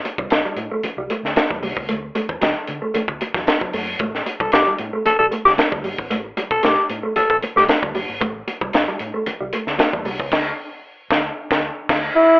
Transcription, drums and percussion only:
0.05 closed hi-hat, muted conga
0.18 kick
0.30 snare, closed hi-hat, high conga
0.57 closed hi-hat, muted conga
0.83 closed hi-hat, muted conga, low conga
1.10 closed hi-hat, muted conga
1.25 snare
1.36 snare, closed hi-hat, high conga
1.50 kick
1.63 open hi-hat, high conga
1.77 kick
1.89 closed hi-hat
2.15 closed hi-hat, muted conga
2.29 kick
2.42 snare, closed hi-hat, high conga
2.67 closed hi-hat
2.95 closed hi-hat, muted conga, low conga
3.08 kick
3.21 closed hi-hat, muted conga
3.34 kick, snare
3.47 snare, closed hi-hat, high conga
3.61 kick
3.73 open hi-hat, high conga
3.99 kick, closed hi-hat
4.15 snare
4.26 closed hi-hat, muted conga
4.40 kick
4.52 snare, closed hi-hat, high conga
4.79 closed hi-hat, muted conga
5.05 closed hi-hat, muted conga, low conga
5.32 closed hi-hat, muted conga
5.47 snare
5.58 snare, closed hi-hat, high conga
5.72 kick
5.84 open hi-hat, high conga
5.98 kick
6.11 closed hi-hat
6.37 closed hi-hat, muted conga
6.51 kick
6.63 snare, closed hi-hat, high conga
6.90 closed hi-hat, muted conga
7.16 closed hi-hat, muted conga, low conga
7.30 kick
7.43 closed hi-hat, muted conga
7.57 snare
7.68 snare, closed hi-hat, high conga
7.83 kick
7.95 open hi-hat, high conga
8.21 kick, closed hi-hat
8.48 closed hi-hat, muted conga
8.61 kick
8.73 snare, closed hi-hat, high conga
8.99 closed hi-hat, muted conga
9.26 closed hi-hat, muted conga, low conga
9.53 closed hi-hat, muted conga
9.67 snare
9.79 snare, closed hi-hat, high conga
9.93 kick
10.05 open hi-hat, high conga
10.20 kick
10.32 kick, snare, crash
11.11 kick, snare
11.51 kick, snare
11.89 kick, snare, crash

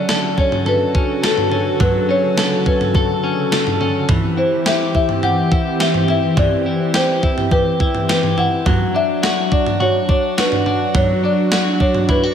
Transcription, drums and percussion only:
0.09 snare
0.38 kick
0.52 floor tom
0.66 floor tom
0.95 kick
1.24 snare
1.38 floor tom
1.52 floor tom
1.80 kick, floor tom
2.38 snare
2.66 kick
2.81 floor tom
2.95 kick, floor tom
3.52 snare
3.67 floor tom
3.81 floor tom
4.09 kick, floor tom
4.66 snare
4.95 kick
5.09 floor tom
5.23 floor tom
5.52 kick
5.80 snare
5.94 floor tom
6.08 floor tom
6.37 kick, floor tom
6.94 snare
7.23 kick
7.38 floor tom
7.51 kick, floor tom
7.80 kick
7.95 floor tom
8.09 snare
8.23 floor tom
8.38 floor tom
8.66 kick, floor tom
9.23 snare
9.52 kick
9.67 floor tom
9.81 floor tom
10.09 kick
10.38 snare
10.52 floor tom
10.66 floor tom
10.95 kick, floor tom
11.52 snare
11.80 kick
11.95 floor tom
12.09 kick, floor tom

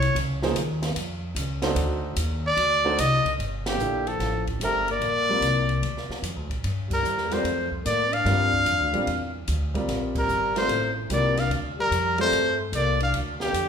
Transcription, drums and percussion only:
0.02 ride
0.16 ride
0.42 snare
0.56 hi-hat pedal, ride
0.82 snare, ride
0.96 ride
1.36 hi-hat pedal, ride
1.62 snare, ride
1.76 ride
2.16 hi-hat pedal, ride
2.57 ride
2.98 hi-hat pedal, ride
3.25 kick, ride
3.40 ride
3.66 snare, ride
3.79 hi-hat pedal
4.07 ride
4.20 snare, ride
4.47 kick, ride
4.61 hi-hat pedal, ride
4.88 ride
5.01 ride
5.42 hi-hat pedal, ride
5.69 ride
5.83 ride
5.97 snare
6.11 snare
6.24 hi-hat pedal, ride
6.50 kick, ride
6.64 ride
6.90 kick, crash
7.05 hi-hat pedal
7.18 snare
7.31 snare, ride
7.45 ride
7.71 kick
7.86 hi-hat pedal, ride
8.13 ride
8.26 snare, ride
8.53 kick
8.66 hi-hat pedal, ride
8.94 ride
9.07 ride
9.48 hi-hat pedal, ride
9.75 kick, ride
9.88 snare, ride
10.15 kick, crash
10.29 hi-hat pedal
10.56 snare, ride
10.69 ride
11.10 hi-hat pedal, ride
11.37 snare, ride
11.51 ride
11.92 hi-hat pedal, ride
12.18 ride
12.33 ride
12.73 hi-hat pedal, ride
13.00 ride
13.14 ride
13.40 snare
13.54 hi-hat pedal, ride

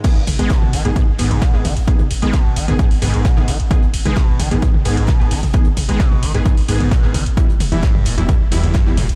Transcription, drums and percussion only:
0.04 kick, closed hi-hat, crash
0.16 closed hi-hat
0.27 closed hi-hat, open hi-hat, mid tom, ride
0.39 closed hi-hat
0.50 kick, snare, closed hi-hat
0.62 mid tom
0.73 closed hi-hat, open hi-hat, ride
0.85 closed hi-hat
0.96 kick, closed hi-hat, mid tom
1.18 closed hi-hat, open hi-hat, ride
1.31 closed hi-hat, mid tom
1.42 kick, snare, closed hi-hat
1.53 snare
1.64 snare, open hi-hat, mid tom, ride
1.77 closed hi-hat
1.88 kick, closed hi-hat
1.99 closed hi-hat, mid tom
2.11 closed hi-hat, open hi-hat, ride
2.22 closed hi-hat
2.33 kick, snare, closed hi-hat, mid tom
2.56 closed hi-hat, open hi-hat, ride
2.68 closed hi-hat, mid tom
2.79 kick, closed hi-hat
2.91 open hi-hat
3.02 closed hi-hat, open hi-hat, mid tom, ride
3.13 snare, closed hi-hat
3.25 kick, snare, closed hi-hat
3.36 snare, mid tom
3.47 snare, closed hi-hat, open hi-hat, ride
3.60 closed hi-hat
3.71 kick, closed hi-hat, mid tom
3.83 closed hi-hat
3.93 closed hi-hat, open hi-hat, ride
4.06 closed hi-hat, mid tom
4.16 kick, snare, closed hi-hat
4.39 closed hi-hat, open hi-hat, mid tom, ride
4.51 closed hi-hat
4.62 kick, closed hi-hat
4.74 mid tom
4.85 closed hi-hat, open hi-hat, ride
4.97 closed hi-hat
5.07 kick, snare, closed hi-hat, mid tom
5.20 snare
5.31 snare, open hi-hat, ride
5.43 closed hi-hat, mid tom
5.54 kick, closed hi-hat
5.65 closed hi-hat
5.77 closed hi-hat, open hi-hat, mid tom, ride
5.89 closed hi-hat
6.00 kick, snare, closed hi-hat
6.12 mid tom
6.23 closed hi-hat, open hi-hat, ride
6.35 closed hi-hat
6.46 kick, closed hi-hat, mid tom
6.57 open hi-hat
6.68 closed hi-hat, open hi-hat, ride
6.80 snare, closed hi-hat, mid tom
6.91 kick, snare, closed hi-hat
7.03 snare
7.14 snare, closed hi-hat, open hi-hat, mid tom, ride
7.26 closed hi-hat
7.37 kick, closed hi-hat
7.49 closed hi-hat
7.60 closed hi-hat, open hi-hat, mid tom, ride
7.72 closed hi-hat
7.83 kick, snare, closed hi-hat
7.95 mid tom
8.05 closed hi-hat, open hi-hat, ride
8.18 closed hi-hat
8.29 kick, closed hi-hat, mid tom
8.52 closed hi-hat, open hi-hat, ride
8.63 closed hi-hat, mid tom
8.74 kick, snare, closed hi-hat
8.87 snare
8.97 snare, open hi-hat, mid tom, ride
9.09 closed hi-hat

